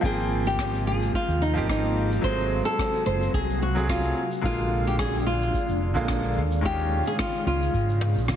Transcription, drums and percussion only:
0.03 kick medium
0.03 shaker medium
0.19 shaker soft
0.47 shaker medium
0.58 kick loud
0.58 cross-stick medium
0.58 shaker medium
0.75 shaker medium
1.02 shaker medium
1.13 kick medium
1.13 shaker medium
1.29 shaker soft
1.57 shaker medium
1.68 kick loud
1.68 cross-stick loud
1.68 shaker medium
1.84 shaker soft
2.12 shaker medium
2.23 kick medium
2.23 shaker medium
2.40 shaker soft
2.67 shaker medium
2.78 kick loud
2.78 cross-stick medium
2.78 shaker medium
2.94 shaker soft
3.22 shaker medium
3.33 kick medium
3.33 shaker medium
3.50 shaker soft
3.77 shaker medium
3.88 kick medium
3.88 cross-stick loud
3.88 shaker medium
4.04 shaker soft
4.32 shaker medium
4.43 kick medium
4.43 shaker medium
4.60 shaker soft
4.87 shaker medium
4.99 kick loud
4.99 cross-stick medium
4.99 shaker medium
5.15 shaker soft
5.42 shaker medium
5.54 kick medium
5.54 shaker medium
5.69 shaker soft
5.96 shaker medium
6.08 kick loud
6.08 cross-stick medium
6.08 shaker medium
6.23 shaker soft
6.52 shaker medium
6.64 kick loud
6.64 shaker medium
6.79 shaker soft
7.06 shaker medium
7.19 kick medium
7.19 cross-stick loud
7.19 shaker medium
7.35 shaker soft
7.62 shaker medium
7.74 kick medium
7.74 shaker medium
7.89 shaker soft
8.01 high tom medium
8.17 shaker medium
8.28 kick loud
8.28 cross-stick medium
8.28 mid tom medium
8.28 shaker medium

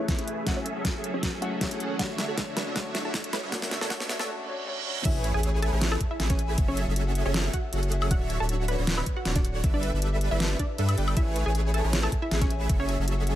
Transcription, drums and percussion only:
0.08 kick loud
0.08 snare medium
0.08 closed hi-hat medium
0.19 closed hi-hat medium
0.28 closed hi-hat medium
0.47 kick medium
0.47 snare medium
0.47 closed hi-hat medium
0.66 closed hi-hat medium
0.85 kick loud
0.85 snare medium
0.85 closed hi-hat medium
1.04 closed hi-hat medium
1.23 kick medium
1.23 snare medium
1.23 closed hi-hat medium
1.42 closed hi-hat medium
1.61 kick loud
1.61 snare medium
1.61 closed hi-hat medium
1.71 closed hi-hat medium
1.80 closed hi-hat medium
1.99 kick loud
1.99 snare medium
1.99 closed hi-hat medium
2.18 snare medium
2.18 closed hi-hat medium
2.38 kick loud
2.38 snare medium
2.38 closed hi-hat medium
2.57 snare medium
2.57 closed hi-hat medium
2.76 kick loud
2.76 snare medium
2.76 closed hi-hat medium
2.95 snare medium
2.95 closed hi-hat medium
3.14 kick loud
3.14 snare medium
3.14 closed hi-hat medium
3.24 closed hi-hat medium
3.33 snare medium
3.33 closed hi-hat medium
3.52 kick loud
3.52 snare medium
3.52 closed hi-hat medium
3.62 snare medium
3.71 snare medium
3.71 closed hi-hat medium
3.81 snare medium
3.90 kick loud
3.90 snare loud
3.90 closed hi-hat medium
4.00 snare medium
4.09 snare loud
4.09 closed hi-hat medium
4.20 snare medium
5.05 kick loud
5.05 closed hi-hat medium
5.05 crash loud
5.24 closed hi-hat medium
5.43 closed hi-hat medium
5.62 closed hi-hat medium
5.81 snare loud
5.81 closed hi-hat medium
5.92 high woodblock medium
6.01 kick medium
6.01 closed hi-hat medium
6.20 snare medium
6.20 closed hi-hat medium
6.30 kick loud
6.30 closed hi-hat medium
6.39 closed hi-hat medium
6.58 kick loud
6.58 closed hi-hat medium
6.77 closed hi-hat medium
6.96 closed hi-hat medium
7.15 closed hi-hat medium
7.34 snare loud
7.34 closed hi-hat medium
7.53 kick medium
7.53 closed hi-hat medium
7.73 closed hi-hat medium
7.83 closed hi-hat medium
7.92 closed hi-hat medium
8.02 high woodblock medium
8.11 kick loud
8.11 closed hi-hat medium
8.30 closed hi-hat medium
8.49 closed hi-hat medium
8.68 closed hi-hat medium
8.87 snare loud
8.87 closed hi-hat medium
8.97 high woodblock medium
9.06 kick medium
9.06 closed hi-hat medium
9.25 snare medium
9.25 closed hi-hat medium
9.36 kick loud
9.36 closed hi-hat medium
9.45 closed hi-hat medium
9.64 kick loud
9.64 closed hi-hat medium
9.83 closed hi-hat medium
10.02 closed hi-hat medium
10.21 closed hi-hat medium
10.40 snare loud
10.40 closed hi-hat medium
10.59 kick medium
10.59 closed hi-hat medium
10.78 closed hi-hat medium
10.89 closed hi-hat medium
10.89 high woodblock medium
10.98 closed hi-hat medium
11.08 high woodblock medium
11.17 kick loud
11.17 closed hi-hat medium
11.36 closed hi-hat medium
11.55 closed hi-hat medium
11.74 closed hi-hat medium
11.93 snare loud
11.93 closed hi-hat medium
12.03 high woodblock medium
12.12 kick medium
12.12 closed hi-hat medium
12.31 snare medium
12.31 closed hi-hat medium
12.41 kick loud
12.41 closed hi-hat medium
12.50 closed hi-hat medium
12.69 kick loud
12.69 closed hi-hat medium
12.89 closed hi-hat medium
13.08 closed hi-hat medium
13.27 closed hi-hat medium

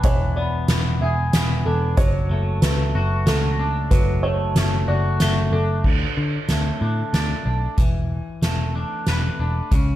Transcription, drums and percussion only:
0.04 kick loud
0.04 closed hi-hat medium
0.68 snare medium
0.68 closed hi-hat medium
1.33 snare medium
1.33 closed hi-hat medium
1.97 kick loud
1.97 closed hi-hat medium
2.62 snare medium
2.62 closed hi-hat medium
3.27 snare medium
3.27 closed hi-hat medium
3.91 kick medium
3.91 closed hi-hat medium
4.56 snare medium
4.56 closed hi-hat medium
5.20 snare medium
5.20 closed hi-hat medium
5.84 kick medium
5.84 crash medium
6.49 snare medium
6.49 closed hi-hat medium
7.14 snare medium
7.14 closed hi-hat medium
7.78 kick medium
7.78 closed hi-hat soft
8.43 snare medium
8.43 closed hi-hat medium
9.07 snare medium
9.07 closed hi-hat soft
9.72 kick medium
9.72 closed hi-hat medium

